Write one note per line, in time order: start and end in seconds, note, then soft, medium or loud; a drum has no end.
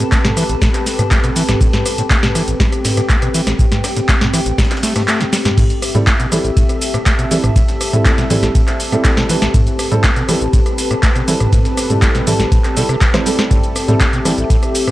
0.00 5.54 C4 medium
0.00 5.58 C4 medium
0.00 5.54 G4 medium
0.00 5.56 G4 medium
0.00 5.54 A4 medium
0.00 5.56 B4 loud
0.00 2.38 A5 medium
0.00 cabasa soft
0.12 0.19 A3 medium
0.12 kick loud
0.12 cross-stick soft
0.12 snare loud
0.12 clap loud
0.12 ride medium
0.12 cabasa soft
0.25 0.31 B2 medium
0.25 snare medium
0.25 closed hi-hat soft
0.25 mid tom medium
0.25 cabasa soft
0.37 0.44 E3 loud
0.37 cross-stick medium
0.37 open hi-hat loud
0.37 ride medium
0.37 cabasa medium
0.49 0.56 A1 medium
0.49 closed hi-hat medium
0.49 cabasa soft
0.62 0.69 A2 medium
0.62 kick loud
0.62 snare medium
0.62 ride medium
0.62 cabasa soft
0.74 cross-stick soft
0.74 snare medium
0.74 clap soft
0.74 closed hi-hat medium
0.74 cabasa soft
0.86 snare soft
0.86 open hi-hat loud
0.86 ride medium
0.86 cabasa medium
0.99 1.03 A2 medium
0.99 cross-stick medium
0.99 closed hi-hat medium
0.99 mid tom medium
0.99 cabasa soft
1.11 1.18 A3 medium
1.11 kick loud
1.11 snare loud
1.11 clap loud
1.11 ride medium
1.11 cabasa soft
1.24 1.31 B2 medium
1.24 cross-stick soft
1.24 closed hi-hat medium
1.24 cabasa soft
1.36 1.43 E3 loud
1.36 snare medium
1.36 open hi-hat loud
1.36 ride medium
1.36 cabasa medium
1.49 1.55 A1 medium
1.49 cross-stick medium
1.49 snare medium
1.49 closed hi-hat medium
1.49 mid tom medium
1.49 cabasa soft
1.61 1.68 A2 medium
1.61 kick loud
1.61 ride medium
1.61 cabasa soft
1.73 snare medium
1.73 mid tom medium
1.73 cabasa soft
1.86 cross-stick medium
1.86 open hi-hat loud
1.86 ride medium
1.86 cabasa medium
1.98 2.02 A2 medium
1.98 closed hi-hat medium
1.98 cabasa soft
2.10 2.17 A3 medium
2.10 kick loud
2.10 cross-stick soft
2.10 snare loud
2.10 clap loud
2.10 ride medium
2.10 cabasa soft
2.23 2.30 B2 medium
2.23 snare soft
2.23 snare medium
2.23 closed hi-hat soft
2.23 mid tom medium
2.23 cabasa soft
2.35 2.42 E3 loud
2.35 5.60 G5 medium
2.35 cross-stick medium
2.35 open hi-hat loud
2.35 ride medium
2.35 cabasa medium
2.48 2.54 A1 medium
2.48 closed hi-hat medium
2.48 cabasa soft
2.60 2.67 A2 medium
2.60 kick loud
2.60 snare medium
2.60 ride medium
2.60 cabasa soft
2.73 cross-stick soft
2.73 closed hi-hat medium
2.73 cabasa soft
2.85 snare soft
2.85 snare loud
2.85 mid tom medium
2.85 open hi-hat loud
2.85 ride medium
2.85 cabasa medium
2.97 3.01 A2 medium
2.97 cross-stick medium
2.97 snare soft
2.97 closed hi-hat medium
2.97 cabasa soft
3.09 3.16 A3 medium
3.09 kick loud
3.09 clap loud
3.09 ride medium
3.09 cabasa soft
3.22 3.29 B2 medium
3.22 cross-stick soft
3.22 closed hi-hat medium
3.22 cabasa soft
3.34 3.41 E3 loud
3.34 open hi-hat loud
3.34 ride medium
3.34 cabasa medium
3.47 3.54 A1 medium
3.47 cross-stick medium
3.47 snare medium
3.47 closed hi-hat medium
3.47 cabasa soft
3.59 3.66 A2 medium
3.59 kick loud
3.59 ride medium
3.59 cabasa soft
3.72 snare medium
3.72 closed hi-hat soft
3.72 mid tom medium
3.72 cabasa soft
3.84 cross-stick medium
3.84 snare loud
3.84 open hi-hat loud
3.84 ride medium
3.84 cabasa medium
3.96 4.01 A2 medium
3.96 snare soft
3.96 closed hi-hat medium
3.96 cabasa soft
4.08 4.16 A3 medium
4.08 kick loud
4.08 cross-stick soft
4.08 snare loud
4.08 clap loud
4.08 ride medium
4.08 cabasa soft
4.21 4.28 B2 medium
4.21 snare medium
4.21 closed hi-hat soft
4.21 mid tom medium
4.21 cabasa soft
4.33 4.40 E3 loud
4.33 cross-stick medium
4.33 open hi-hat loud
4.33 ride medium
4.33 cabasa medium
4.46 4.53 A1 medium
4.46 closed hi-hat medium
4.46 cabasa soft
4.58 4.65 A2 medium
4.58 kick loud
4.58 snare medium
4.58 ride medium
4.58 cabasa soft
4.65 snare medium
4.65 ride medium
4.71 cross-stick soft
4.71 snare medium
4.71 clap soft
4.71 closed hi-hat medium
4.71 ride medium
4.71 cabasa soft
4.77 snare medium
4.77 ride medium
4.83 4.93 A3 medium
4.83 snare loud
4.83 snare soft
4.83 open hi-hat loud
4.83 ride medium
4.83 cabasa medium
4.96 5.02 A3 medium
4.96 cross-stick medium
4.96 snare loud
4.96 closed hi-hat medium
4.96 mid tom medium
4.96 ride medium
4.96 cabasa soft
5.08 5.22 A3 medium
5.08 clap loud
5.08 ride medium
5.08 cabasa soft
5.20 5.24 A2 medium
5.20 snare medium
5.20 closed hi-hat medium
5.20 cabasa soft
5.33 5.37 G3 medium
5.33 snare medium
5.33 open hi-hat loud
5.33 ride medium
5.33 cabasa medium
5.45 5.52 G2 loud
5.45 snare medium
5.45 closed hi-hat medium
5.45 mid tom medium
5.45 cabasa soft
5.57 5.64 A2 medium
5.57 14.91 C4 medium
5.57 14.91 G4 medium
5.57 14.91 A4 medium
5.57 9.53 E5 medium
5.57 kick loud
5.57 closed hi-hat medium
5.57 mid tom medium
5.57 ride medium
5.57 crash loud
5.57 cabasa soft
5.70 closed hi-hat soft
5.70 cabasa soft
5.82 cross-stick medium
5.82 open hi-hat loud
5.82 ride medium
5.82 cabasa medium
5.95 5.99 A2 medium
5.95 6.02 G3 loud
5.95 6.02 C4 medium
5.95 6.02 E4 medium
5.95 6.02 A4 loud
5.95 closed hi-hat soft
5.95 mid tom loud
5.95 cabasa soft
6.07 6.14 A3 medium
6.07 kick loud
6.07 cross-stick soft
6.07 snare loud
6.07 clap loud
6.07 closed hi-hat medium
6.07 ride medium
6.07 cabasa soft
6.19 6.26 B2 medium
6.19 14.91 C4 medium
6.19 snare soft
6.19 closed hi-hat soft
6.19 cabasa soft
6.32 6.39 E3 loud
6.32 6.44 G3 medium
6.32 6.44 C4 medium
6.32 6.44 E4 medium
6.32 6.44 A4 medium
6.32 cross-stick medium
6.32 open hi-hat loud
6.32 ride medium
6.32 cabasa medium
6.44 6.51 A1 medium
6.44 closed hi-hat soft
6.44 cabasa soft
6.57 6.64 A2 medium
6.57 kick loud
6.57 closed hi-hat medium
6.57 ride medium
6.57 cabasa soft
6.68 14.64 A5 medium
6.68 cross-stick soft
6.68 closed hi-hat soft
6.68 cabasa soft
6.81 open hi-hat loud
6.81 ride medium
6.81 cabasa medium
6.94 6.98 A2 medium
6.94 cross-stick medium
6.94 closed hi-hat soft
6.94 cabasa soft
7.06 7.13 A3 medium
7.06 kick loud
7.06 snare loud
7.06 clap loud
7.06 closed hi-hat medium
7.06 ride medium
7.06 cabasa soft
7.19 7.26 B2 medium
7.19 cross-stick soft
7.19 closed hi-hat soft
7.19 ride soft
7.19 cabasa soft
7.31 7.38 E3 loud
7.31 7.39 G3 medium
7.31 7.39 C4 medium
7.31 7.39 E4 medium
7.31 7.39 A4 medium
7.31 open hi-hat loud
7.31 ride medium
7.31 cabasa medium
7.44 7.50 A1 medium
7.44 cross-stick medium
7.44 closed hi-hat soft
7.44 mid tom loud
7.44 cabasa soft
7.56 7.63 A2 medium
7.56 kick loud
7.56 closed hi-hat medium
7.56 ride medium
7.56 cabasa soft
7.68 snare medium
7.68 closed hi-hat soft
7.68 cabasa soft
7.81 cross-stick medium
7.81 open hi-hat loud
7.81 ride medium
7.81 cabasa medium
7.93 7.97 A2 medium
7.93 8.27 G3 medium
7.93 8.27 C4 medium
7.93 8.27 E4 medium
7.93 8.27 A4 medium
7.93 closed hi-hat soft
7.93 mid tom loud
7.93 cabasa soft
8.05 8.12 A3 medium
8.05 kick loud
8.05 cross-stick soft
8.05 snare loud
8.05 clap loud
8.05 closed hi-hat medium
8.05 ride medium
8.05 cabasa soft
8.18 8.25 B2 medium
8.18 snare soft
8.18 closed hi-hat soft
8.18 cabasa soft
8.30 8.37 E3 loud
8.30 8.42 G3 medium
8.30 8.42 C4 medium
8.30 8.42 E4 medium
8.30 8.42 A4 loud
8.30 mid tom medium
8.30 open hi-hat loud
8.30 ride medium
8.30 cabasa medium
8.43 8.50 A1 medium
8.43 snare medium
8.43 closed hi-hat soft
8.43 cabasa soft
8.55 8.62 A2 medium
8.55 kick loud
8.55 closed hi-hat medium
8.55 ride medium
8.55 cabasa soft
8.67 cross-stick soft
8.67 snare soft
8.67 clap soft
8.67 closed hi-hat soft
8.67 cabasa soft
8.80 open hi-hat loud
8.80 ride medium
8.80 cabasa medium
8.92 8.96 A2 medium
8.92 9.26 G3 medium
8.92 9.26 C4 medium
8.92 9.26 E4 medium
8.92 9.26 A4 loud
8.92 cross-stick medium
8.92 closed hi-hat soft
8.92 cabasa soft
9.04 9.12 A3 medium
9.04 kick loud
9.04 snare loud
9.04 clap loud
9.04 closed hi-hat medium
9.04 ride loud
9.04 cabasa soft
9.17 9.24 B2 medium
9.17 cross-stick soft
9.17 snare medium
9.17 closed hi-hat soft
9.17 cabasa soft
9.29 9.36 E3 loud
9.29 9.37 G3 medium
9.29 9.37 C4 medium
9.29 9.37 E4 medium
9.29 9.37 B4 medium
9.29 snare medium
9.29 open hi-hat loud
9.29 ride medium
9.29 cabasa medium
9.42 9.49 A1 medium
9.42 cross-stick medium
9.42 snare medium
9.42 closed hi-hat soft
9.42 cabasa soft
9.54 9.61 A2 medium
9.54 13.49 B4 loud
9.54 kick loud
9.54 closed hi-hat medium
9.54 mid tom medium
9.54 ride medium
9.54 cabasa soft
9.67 closed hi-hat soft
9.67 cabasa soft
9.79 cross-stick medium
9.79 open hi-hat loud
9.79 ride medium
9.79 cabasa medium
9.92 9.96 A2 medium
9.92 9.99 G3 medium
9.92 9.99 C4 medium
9.92 9.99 E4 medium
9.92 9.99 A4 loud
9.92 closed hi-hat soft
9.92 mid tom loud
9.92 cabasa soft
10.04 10.11 A3 medium
10.04 kick loud
10.04 cross-stick soft
10.04 snare loud
10.04 clap loud
10.04 closed hi-hat medium
10.04 ride medium
10.04 cabasa soft
10.16 10.23 B2 medium
10.16 snare soft
10.16 closed hi-hat soft
10.16 cabasa soft
10.29 10.36 E3 loud
10.29 10.41 G3 medium
10.29 10.41 C4 medium
10.29 10.41 E4 medium
10.29 10.41 A4 medium
10.29 cross-stick medium
10.29 open hi-hat loud
10.29 ride medium
10.29 cabasa medium
10.41 10.48 A1 medium
10.41 closed hi-hat soft
10.41 cabasa soft
10.53 10.60 A2 medium
10.53 kick loud
10.53 closed hi-hat medium
10.53 ride medium
10.53 cabasa soft
10.66 cross-stick soft
10.66 closed hi-hat soft
10.66 cabasa soft
10.78 open hi-hat loud
10.78 ride medium
10.78 cabasa medium
10.91 10.95 A2 medium
10.91 cross-stick medium
10.91 closed hi-hat soft
10.91 cabasa soft
11.03 11.10 A3 medium
11.03 kick loud
11.03 snare loud
11.03 clap loud
11.03 closed hi-hat medium
11.03 ride medium
11.03 cabasa soft
11.16 11.22 B2 medium
11.16 cross-stick soft
11.16 closed hi-hat soft
11.16 ride soft
11.16 cabasa soft
11.28 11.35 E3 loud
11.28 11.35 G3 medium
11.28 11.35 C4 medium
11.28 11.35 E4 medium
11.28 11.35 A4 medium
11.28 open hi-hat loud
11.28 ride medium
11.28 cabasa medium
11.40 11.47 A1 medium
11.40 cross-stick medium
11.40 closed hi-hat soft
11.40 mid tom medium
11.40 cabasa soft
11.53 11.59 A2 medium
11.53 kick loud
11.53 closed hi-hat medium
11.53 mid tom medium
11.53 ride medium
11.53 cabasa soft
11.65 snare medium
11.65 closed hi-hat soft
11.65 cabasa soft
11.77 cross-stick medium
11.77 open hi-hat loud
11.77 ride medium
11.77 cabasa medium
11.90 11.94 A2 medium
11.90 12.24 G3 medium
11.90 12.24 C4 medium
11.90 12.24 E4 medium
11.90 12.24 A4 medium
11.90 closed hi-hat soft
11.90 mid tom loud
11.90 cabasa soft
12.02 12.09 A3 medium
12.02 kick loud
12.02 cross-stick soft
12.02 snare loud
12.02 clap loud
12.02 closed hi-hat medium
12.02 ride medium
12.02 cabasa soft
12.15 12.21 B2 medium
12.15 snare soft
12.15 closed hi-hat soft
12.15 cabasa soft
12.27 12.34 E3 loud
12.27 12.39 G3 medium
12.27 12.39 C4 medium
12.27 12.39 E4 medium
12.27 12.39 A4 loud
12.27 mid tom medium
12.27 open hi-hat loud
12.27 ride medium
12.27 cabasa medium
12.40 12.46 A1 medium
12.40 snare medium
12.40 closed hi-hat soft
12.40 cabasa soft
12.52 12.59 A2 medium
12.52 kick loud
12.52 closed hi-hat medium
12.52 ride medium
12.52 cabasa soft
12.64 cross-stick soft
12.64 snare soft
12.64 clap soft
12.64 closed hi-hat soft
12.64 cabasa soft
12.77 12.83 B2 medium
12.77 12.84 G3 medium
12.77 12.84 C4 medium
12.77 12.84 E4 medium
12.77 12.84 A4 loud
12.77 open hi-hat loud
12.77 ride medium
12.77 cabasa medium
12.89 12.96 C3 loud
12.89 cross-stick medium
12.89 closed hi-hat soft
12.89 cabasa soft
13.01 13.05 A2 medium
13.01 kick loud
13.01 snare loud
13.01 clap loud
13.01 closed hi-hat medium
13.01 ride medium
13.01 cabasa soft
13.14 13.21 E3 medium
13.14 13.21 G3 medium
13.14 13.21 C4 medium
13.14 13.21 E4 medium
13.14 13.21 C5 loud
13.14 cross-stick soft
13.14 snare medium
13.14 closed hi-hat soft
13.14 cabasa soft
13.26 13.85 G3 medium
13.26 13.30 G3 loud
13.26 13.85 C4 medium
13.26 13.85 E4 medium
13.26 13.85 A4 loud
13.26 snare medium
13.26 open hi-hat loud
13.26 ride medium
13.26 cabasa medium
13.39 13.45 C4 medium
13.39 cross-stick medium
13.39 snare medium
13.39 closed hi-hat soft
13.39 cabasa soft
13.51 13.58 A2 medium
13.51 14.91 E5 loud
13.51 kick loud
13.51 closed hi-hat medium
13.51 mid tom medium
13.51 ride medium
13.51 cabasa soft
13.64 closed hi-hat soft
13.64 cabasa soft
13.76 cross-stick medium
13.76 open hi-hat loud
13.76 ride medium
13.76 cabasa medium
13.88 13.95 A2 medium
13.88 13.96 G3 medium
13.88 13.96 C4 medium
13.88 13.96 E4 medium
13.88 13.96 A4 loud
13.88 closed hi-hat soft
13.88 mid tom medium
13.88 cabasa soft
14.00 14.07 A3 medium
14.00 kick loud
14.00 cross-stick soft
14.00 snare loud
14.00 clap loud
14.00 closed hi-hat medium
14.00 ride medium
14.00 cabasa soft
14.13 14.20 B2 medium
14.13 snare soft
14.13 closed hi-hat soft
14.13 cabasa soft
14.25 14.32 E3 loud
14.25 14.37 G3 medium
14.25 14.37 C4 medium
14.25 14.37 E4 medium
14.25 14.37 A4 medium
14.25 cross-stick medium
14.25 open hi-hat loud
14.25 ride medium
14.25 cabasa medium
14.38 14.45 A1 medium
14.38 closed hi-hat soft
14.38 cabasa soft
14.50 14.57 A2 medium
14.50 kick loud
14.50 closed hi-hat medium
14.50 ride medium
14.50 cabasa soft
14.61 14.91 E5 medium
14.61 cross-stick soft
14.61 closed hi-hat soft
14.61 cabasa soft
14.75 open hi-hat loud
14.75 ride medium
14.75 cabasa medium
14.87 14.91 A2 medium
14.87 cross-stick medium
14.87 closed hi-hat soft
14.87 cabasa soft